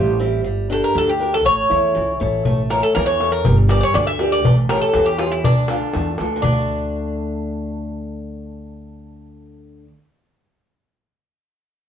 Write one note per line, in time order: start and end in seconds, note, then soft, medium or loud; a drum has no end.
0.00 0.46 A1 loud
0.00 0.43 G3 medium
0.00 0.10 C4 medium
0.00 0.17 F4 medium
0.00 0.10 G4 medium
0.00 0.10 E5 soft
0.20 0.40 C4 soft
0.20 0.40 E4 soft
0.20 0.40 G4 medium
0.44 0.81 G1 loud
0.44 0.69 G3 medium
0.70 1.10 D4 medium
0.70 1.10 G4 soft
0.70 0.83 A4 medium
0.70 1.10 A#4 medium
0.84 0.96 A#4 medium
0.95 1.46 D2 loud
0.95 1.43 D3 medium
0.95 1.09 A4 medium
1.09 1.34 G4 medium
1.19 1.40 D4 soft
1.19 1.40 G4 soft
1.19 1.40 A#4 soft
1.34 1.45 A4 loud
1.45 1.63 A1 medium
1.45 1.93 A3 medium
1.45 2.16 C#5 loud
1.70 1.93 E2 medium
1.70 2.10 E4 medium
1.70 2.10 A4 soft
1.70 2.10 C#5 medium
1.95 2.18 C#2 medium
1.95 2.43 E3 medium
2.20 2.46 A1 medium
2.20 2.60 E4 soft
2.20 2.60 A4 soft
2.20 2.60 C#5 medium
2.45 2.81 A1 medium
2.45 2.94 A3 medium
2.45 darbuka dum medium
2.70 3.10 E4 medium
2.70 3.10 A4 soft
2.70 2.83 A#4 medium
2.70 3.10 C#5 medium
2.70 darbuka tek medium
2.83 2.94 A4 medium
2.95 3.47 E2 loud
2.95 3.43 E3 medium
2.95 3.06 A#4 loud
2.95 darbuka tek medium
3.06 3.30 C#5 medium
3.20 3.40 E4 soft
3.20 3.40 A4 soft
3.20 3.40 C#5 soft
3.20 darbuka tek medium
3.32 3.55 A#4 medium
3.45 3.80 G1 loud
3.45 3.93 G3 medium
3.45 darbuka dum medium
3.68 4.09 G4 medium
3.68 4.09 A#4 medium
3.68 4.09 D5 medium
3.68 3.79 D5 medium
3.68 darbuka tek medium
3.81 3.96 C#5 medium
3.81 3.83 D5 medium
3.94 4.45 D2 loud
3.94 4.43 D3 medium
3.94 4.07 D5 loud
3.94 darbuka tek medium
4.07 4.32 E5 loud
4.19 4.40 G4 soft
4.19 4.40 A#4 soft
4.19 4.40 D5 medium
4.19 darbuka tek medium
4.32 4.55 D5 loud
4.44 4.80 A1 medium
4.44 4.93 A3 medium
4.44 darbuka dum loud
4.69 5.10 G4 medium
4.69 5.10 A4 soft
4.69 4.81 A#4 medium
4.69 5.10 C#5 medium
4.69 darbuka tek medium
4.81 5.07 A4 medium
4.94 5.44 E2 loud
4.94 5.43 E3 medium
4.94 darbuka tek medium
5.06 5.18 G4 medium
5.18 5.31 F4 medium
5.18 5.39 G4 soft
5.18 5.39 A4 soft
5.18 5.39 C#5 soft
5.18 darbuka tek medium
5.31 5.43 E4 medium
5.44 5.79 D2 medium
5.44 5.93 D3 medium
5.44 6.15 D4 medium
5.44 darbuka dum loud
5.57 darbuka tek soft
5.68 6.09 D4 medium
5.68 6.09 F4 medium
5.68 6.10 A4 medium
5.68 darbuka tek medium
5.94 6.17 E2 medium
5.94 6.42 A3 medium
5.94 darbuka tek medium
6.18 6.42 D2 medium
6.18 6.39 D4 soft
6.18 6.39 F4 soft
6.18 6.40 A4 medium
6.18 darbuka tek medium
6.31 darbuka tek soft
6.36 9.84 D3 medium
6.42 9.89 D2 loud
6.42 9.87 D4 medium
6.42 darbuka dum medium
6.52 9.93 A3 medium